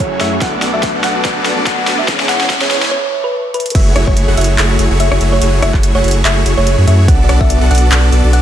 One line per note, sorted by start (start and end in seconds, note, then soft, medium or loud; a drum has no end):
0.00 0.38 F#3 medium
0.00 0.38 A3 medium
0.00 0.39 A3 medium
0.00 0.39 C#4 medium
0.00 0.40 E4 medium
0.00 0.40 G#4 loud
0.00 0.13 C#5 medium
0.00 0.38 G#5 medium
0.00 0.38 E6 medium
0.00 riser medium
0.11 0.19 F#1 medium
0.11 0.18 A3 medium
0.11 0.18 E4 medium
0.11 0.18 F#4 medium
0.11 0.18 G#4 medium
0.11 0.18 C#5 medium
0.21 0.40 F#2 medium
0.21 0.39 A3 medium
0.21 0.39 E4 medium
0.21 0.39 F#4 medium
0.21 0.39 G#4 medium
0.21 0.39 C#5 medium
0.21 0.36 E5 medium
0.21 snare medium
0.21 closed hi-hat medium
0.40 0.61 B1 loud
0.40 1.54 F#3 medium
0.40 1.54 A3 medium
0.40 0.60 B3 medium
0.40 1.55 B3 medium
0.40 0.60 D4 medium
0.40 1.55 D4 medium
0.40 0.60 F#4 medium
0.40 0.60 A4 medium
0.40 2.89 B4 medium
0.40 0.60 D5 loud
0.40 0.64 F#5 loud
0.40 2.07 A5 medium
0.40 2.07 D6 medium
0.40 kick loud
0.40 snare medium
0.40 closed hi-hat medium
0.44 1.56 A4 medium
0.62 0.72 B1 medium
0.62 0.72 B3 medium
0.62 0.72 D4 medium
0.62 0.72 F#4 medium
0.62 0.72 A4 medium
0.62 0.72 D5 medium
0.62 snare medium
0.62 closed hi-hat medium
0.74 0.93 B1 loud
0.74 0.92 B3 medium
0.74 0.92 D4 medium
0.74 0.92 F#4 medium
0.74 0.92 A4 medium
0.74 0.92 D5 medium
0.74 0.96 E5 loud
0.83 kick loud
0.83 snare medium
0.83 closed hi-hat medium
0.95 1.02 B1 loud
0.95 1.02 B3 medium
0.95 1.02 D4 medium
0.95 1.02 F#4 medium
0.95 1.02 A4 medium
0.95 1.02 F#5 loud
1.04 1.23 B1 medium
1.04 1.23 B3 medium
1.04 1.23 D4 medium
1.04 1.23 F#4 medium
1.04 1.23 A4 medium
1.04 1.23 D5 medium
1.04 1.27 F#5 loud
1.04 snare medium
1.04 closed hi-hat medium
1.25 1.44 B1 loud
1.25 1.43 B3 loud
1.25 1.43 D4 medium
1.25 1.44 F#4 medium
1.25 1.43 A4 medium
1.25 1.43 D5 loud
1.25 kick loud
1.25 snare medium
1.25 closed hi-hat medium
1.46 1.55 B1 loud
1.46 1.55 B3 medium
1.46 1.55 D4 medium
1.46 1.55 F#4 medium
1.46 1.55 A4 medium
1.46 1.55 D5 loud
1.46 snare medium
1.46 closed hi-hat medium
1.56 1.76 B1 loud
1.56 2.05 F#3 medium
1.56 2.06 A3 medium
1.56 1.75 B3 loud
1.56 2.06 B3 medium
1.56 1.75 D4 medium
1.56 2.07 D4 medium
1.56 1.75 F#4 medium
1.56 1.75 A4 medium
1.56 2.07 A4 loud
1.56 1.75 D5 loud
1.66 1.89 F#5 medium
1.66 kick loud
1.66 snare medium
1.66 closed hi-hat medium
1.78 1.86 B1 medium
1.78 1.85 B3 medium
1.78 1.85 D4 medium
1.78 1.85 F#4 medium
1.78 1.85 A4 medium
1.78 1.85 D5 medium
1.87 2.06 B1 loud
1.87 2.06 B3 medium
1.87 2.06 D4 medium
1.87 2.06 F#4 medium
1.87 2.06 A4 medium
1.87 2.06 D5 medium
1.87 snare medium
1.87 closed hi-hat medium
1.99 2.21 E5 loud
2.06 2.27 C#2 loud
2.06 2.91 E3 medium
2.06 2.91 G#3 medium
2.06 2.27 B3 loud
2.06 2.92 B3 medium
2.06 2.27 C#4 medium
2.06 2.92 C#4 medium
2.06 2.27 E4 medium
2.06 2.27 G#4 medium
2.06 2.27 C#5 loud
2.06 2.91 E5 medium
2.06 2.91 C#6 medium
2.06 kick loud
2.06 snare medium
2.06 closed hi-hat medium
2.10 2.93 G#4 medium
2.20 snare medium
2.29 2.38 C#2 medium
2.29 2.39 B3 medium
2.29 2.39 C#4 medium
2.29 2.39 E4 medium
2.29 2.39 G#4 medium
2.29 2.39 C#5 medium
2.29 2.52 F#5 loud
2.29 snare loud
2.29 closed hi-hat medium
2.41 2.59 C#2 loud
2.41 2.59 B3 medium
2.41 2.59 C#4 medium
2.41 2.59 E4 medium
2.41 2.59 G#4 medium
2.41 2.59 C#5 medium
2.41 snare medium
2.50 kick loud
2.50 snare loud
2.50 closed hi-hat medium
2.61 2.69 C#2 loud
2.61 2.69 B3 medium
2.61 2.69 C#4 medium
2.61 2.69 E4 medium
2.61 2.69 G#4 medium
2.61 2.84 C#5 loud
2.61 2.69 F#5 loud
2.61 snare medium
2.71 2.90 C#2 loud
2.71 2.89 B3 medium
2.71 2.89 C#4 medium
2.71 2.89 E4 medium
2.71 2.89 G#4 medium
2.71 2.89 C#5 medium
2.71 snare loud
2.71 closed hi-hat medium
2.82 snare medium
2.91 3.14 C#5 loud
3.24 3.46 B4 loud
3.54 3.70 B4 medium
3.54 closed hi-hat medium
3.60 closed hi-hat medium
3.66 closed hi-hat medium
3.70 closed hi-hat medium
3.75 3.94 F#1 loud
3.75 3.94 A3 loud
3.75 3.94 E4 medium
3.75 3.94 F#4 medium
3.75 3.94 G#4 medium
3.75 3.94 C#5 loud
3.75 3.98 E5 loud
3.75 kick loud
3.75 closed hi-hat medium
3.75 crash loud
3.96 4.05 F#1 loud
3.96 4.06 A3 medium
3.96 4.06 E4 medium
3.96 4.06 F#4 medium
3.96 4.06 G#4 medium
3.96 4.06 C#5 medium
3.96 cross-stick medium
3.96 closed hi-hat medium
4.07 4.26 F#1 loud
4.07 4.25 A3 medium
4.07 4.25 E4 medium
4.07 4.25 F#4 medium
4.07 4.25 G#4 medium
4.07 4.25 C#5 medium
4.07 4.30 C#5 loud
4.07 kick medium
4.17 closed hi-hat medium
4.28 4.36 F#1 medium
4.28 4.35 A3 medium
4.28 4.35 E4 medium
4.28 4.35 F#4 medium
4.28 4.35 G#4 medium
4.28 4.35 F#5 loud
4.37 4.57 F#1 medium
4.37 4.56 A3 medium
4.37 4.56 E4 medium
4.37 4.56 F#4 medium
4.37 4.56 G#4 medium
4.37 4.56 C#5 medium
4.37 4.60 E5 loud
4.37 closed hi-hat medium
4.41 closed hi-hat medium
4.44 closed hi-hat medium
4.58 4.77 F#1 medium
4.58 4.77 A3 loud
4.58 4.77 E4 medium
4.58 4.77 F#4 medium
4.58 4.77 G#4 medium
4.58 4.77 C#5 loud
4.58 clap loud
4.58 closed hi-hat medium
4.79 4.88 F#1 loud
4.79 4.88 A3 loud
4.79 4.88 E4 medium
4.79 4.88 F#4 medium
4.79 4.88 G#4 medium
4.79 4.88 C#5 loud
4.79 closed hi-hat medium
4.91 5.09 F#1 loud
4.91 5.09 A3 loud
4.91 5.09 E4 medium
4.91 5.09 F#4 medium
4.91 5.09 G#4 medium
4.91 5.09 C#5 loud
5.00 5.23 E5 medium
5.00 closed hi-hat medium
5.12 5.19 F#1 loud
5.12 5.19 A3 medium
5.12 5.19 E4 medium
5.12 5.19 F#4 medium
5.12 5.19 G#4 medium
5.12 5.19 C#5 medium
5.12 cross-stick medium
5.21 5.40 F#1 loud
5.21 5.40 A3 medium
5.21 5.40 E4 medium
5.21 5.40 F#4 medium
5.21 5.40 G#4 medium
5.21 5.40 C#5 medium
5.21 closed hi-hat medium
5.33 5.55 C#5 loud
5.42 5.61 F#1 loud
5.42 5.60 A3 medium
5.42 5.60 E4 medium
5.42 5.60 F#4 medium
5.42 5.60 G#4 medium
5.42 5.60 C#5 loud
5.42 closed hi-hat medium
5.62 5.72 F#1 medium
5.62 5.72 A3 medium
5.62 5.72 E4 medium
5.62 5.72 F#4 medium
5.62 5.72 G#4 medium
5.62 5.72 C#5 medium
5.62 5.85 E5 medium
5.62 cross-stick medium
5.62 closed hi-hat medium
5.74 5.93 F#1 loud
5.74 5.92 A3 medium
5.74 5.92 E4 medium
5.74 5.92 F#4 medium
5.74 5.92 G#4 medium
5.74 5.92 C#5 medium
5.74 kick medium
5.74 clap soft
5.83 closed hi-hat medium
5.95 6.02 F#1 loud
5.95 6.02 A3 medium
5.95 6.02 E4 medium
5.95 6.02 F#4 medium
5.95 6.02 G#4 medium
5.95 6.17 C#5 loud
5.95 6.02 F#5 loud
6.04 6.23 F#1 medium
6.04 6.23 A3 medium
6.04 6.23 E4 medium
6.04 6.23 F#4 medium
6.04 6.23 G#4 medium
6.04 6.23 C#5 medium
6.04 closed hi-hat medium
6.08 closed hi-hat medium
6.11 closed hi-hat medium
6.25 6.44 F#1 loud
6.25 6.44 A3 loud
6.25 6.44 E4 medium
6.25 6.44 F#4 medium
6.25 6.44 G#4 medium
6.25 6.44 C#5 loud
6.25 6.48 E5 loud
6.25 clap loud
6.25 closed hi-hat medium
6.46 6.55 F#1 medium
6.46 6.55 A3 loud
6.46 6.55 E4 medium
6.46 6.55 F#4 medium
6.46 6.55 G#4 medium
6.46 6.55 C#5 loud
6.46 closed hi-hat medium
6.57 6.76 F#1 loud
6.57 6.75 A3 loud
6.57 6.75 E4 medium
6.57 6.75 F#4 medium
6.57 6.75 G#4 medium
6.57 6.75 C#5 loud
6.57 6.80 C#5 loud
6.67 closed hi-hat medium
6.78 6.86 F#2 loud
6.78 6.85 A3 medium
6.78 6.85 E4 medium
6.78 6.85 F#4 medium
6.78 6.85 G#4 medium
6.78 6.85 C#5 medium
6.87 7.10 F#2 loud
6.87 7.06 A3 medium
6.87 7.06 E4 medium
6.87 7.06 F#4 medium
6.87 7.06 G#4 medium
6.87 7.06 C#5 medium
6.87 7.03 E5 medium
6.87 closed hi-hat medium
7.08 7.27 B1 loud
7.08 7.27 B3 medium
7.08 7.27 D4 medium
7.08 7.27 F#4 medium
7.08 7.27 A4 medium
7.08 7.27 D5 loud
7.08 7.31 F#5 loud
7.08 kick loud
7.08 closed hi-hat medium
7.29 7.39 B1 loud
7.29 7.39 B3 medium
7.29 7.39 D4 medium
7.29 7.39 F#4 medium
7.29 7.39 A4 medium
7.29 7.39 D5 medium
7.29 cross-stick medium
7.29 closed hi-hat medium
7.41 7.59 B1 loud
7.41 7.59 B3 medium
7.41 7.59 D4 medium
7.41 7.59 F#4 medium
7.41 7.59 A4 medium
7.41 7.59 D5 medium
7.41 7.63 E5 loud
7.41 kick medium
7.50 closed hi-hat medium
7.61 7.69 B1 medium
7.61 7.68 B3 medium
7.61 7.68 D4 medium
7.61 7.68 F#4 medium
7.61 7.68 A4 medium
7.61 7.68 F#5 loud
7.71 7.90 B1 medium
7.71 7.89 B3 medium
7.71 7.89 D4 medium
7.71 7.89 F#4 medium
7.71 7.89 A4 medium
7.71 7.89 D5 medium
7.71 7.93 F#5 loud
7.71 closed hi-hat medium
7.75 closed hi-hat medium
7.78 closed hi-hat medium
7.92 8.11 B1 loud
7.92 8.10 B3 loud
7.92 8.10 D4 medium
7.92 8.10 F#4 medium
7.92 8.10 A4 medium
7.92 8.10 D5 loud
7.92 clap loud
7.92 closed hi-hat medium
8.12 8.22 B1 loud
8.12 8.21 B3 loud
8.12 8.21 D4 medium
8.12 8.21 F#4 medium
8.12 8.21 A4 medium
8.12 8.21 D5 loud
8.12 closed hi-hat medium
8.24 8.42 B1 loud
8.24 8.42 B3 loud
8.24 8.42 D4 medium
8.24 8.42 F#4 medium
8.24 8.42 A4 medium
8.24 8.42 D5 loud
8.33 8.42 F#5 medium
8.33 closed hi-hat medium